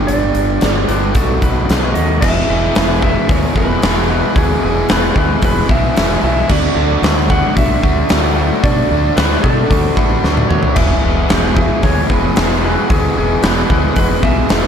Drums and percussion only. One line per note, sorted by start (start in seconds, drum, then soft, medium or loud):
0.08 closed hi-hat medium
0.35 closed hi-hat medium
0.61 snare loud
0.61 closed hi-hat medium
0.89 closed hi-hat medium
1.15 kick loud
1.15 closed hi-hat medium
1.42 kick medium
1.42 closed hi-hat medium
1.69 snare medium
1.69 closed hi-hat medium
1.95 closed hi-hat medium
2.22 kick loud
2.22 crash loud
2.75 snare loud
2.75 open hi-hat medium
3.02 kick medium
3.29 kick medium
3.29 open hi-hat medium
3.56 kick medium
3.82 snare loud
3.82 open hi-hat medium
4.36 kick loud
4.36 open hi-hat medium
4.89 snare loud
4.89 open hi-hat medium
5.16 kick medium
5.42 kick medium
5.42 open hi-hat medium
5.69 kick medium
5.96 snare loud
5.96 open hi-hat medium
6.49 kick loud
6.49 crash loud
7.03 snare loud
7.03 open hi-hat medium
7.30 kick medium
7.57 kick medium
7.57 open hi-hat medium
7.83 kick medium
8.09 snare loud
8.09 open hi-hat medium
8.64 kick loud
8.64 open hi-hat medium
9.17 snare loud
9.17 open hi-hat medium
9.44 kick medium
9.71 kick loud
9.71 open hi-hat medium
9.97 kick medium
10.24 snare medium
10.37 high tom medium
10.51 mid tom medium
10.63 floor tom medium
10.76 kick loud
10.76 crash medium
11.29 snare loud
11.29 open hi-hat medium
11.57 kick medium
11.83 kick medium
11.83 open hi-hat medium
12.10 kick medium
12.36 snare loud
12.36 open hi-hat medium
12.90 kick loud
12.90 open hi-hat medium
13.43 snare loud
13.43 open hi-hat medium
13.70 kick medium
13.96 kick medium
13.96 open hi-hat medium
14.23 kick medium
14.49 snare loud
14.49 open hi-hat medium